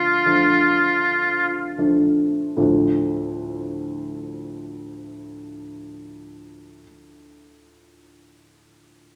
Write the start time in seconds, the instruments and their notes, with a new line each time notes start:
Already playing: grand piano D2 F3 A3 D4, oboe F4
0.26 grand piano F3 A3 D4
1.78 grand piano F3 A3 D4
2.57 grand piano D2 A2 F3 A3 D4 F4